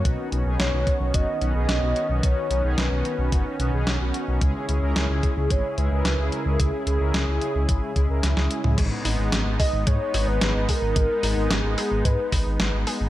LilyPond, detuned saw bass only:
\new Staff \with { instrumentName = "Detuned saw bass" } { \clef bass \time 4/4 \key gis \minor \tempo 4 = 110 b,,16 r16 b,,16 b,,16 b,,16 b,,16 r16 b,,16 fis,,16 r16 b,,16 b,,16 b,,16 b,,16 r16 b,,16 | b,,16 r16 b,,16 b,,16 b,,16 b,,16 r16 b,,16 fis,,16 r16 b,,16 b,,16 b,,16 b,,16 r16 b,,16 | cis,16 r16 cis,16 cis,16 cis,16 cis,16 r16 cis,16 gis,,16 r16 cis,16 cis,16 cis,16 cis,16 r16 cis,16 | cis,16 r16 cis,16 cis,16 cis,16 cis,16 r16 cis,16 gis,,16 r16 cis,16 cis,16 cis,16 cis,16 r16 cis,16 |
gis,,16 r16 gis,,16 gis,,16 gis,,16 gis,,16 r16 gis,,16 gis,16 r16 gis,,16 gis,,16 gis,,16 gis,,16 r16 gis,,16 | gis,,16 r16 gis,,16 gis,,16 gis,,16 gis,,16 r16 gis,,16 gis,16 r16 gis,,16 gis,,16 gis,,16 gis,,16 r16 gis,,16 | }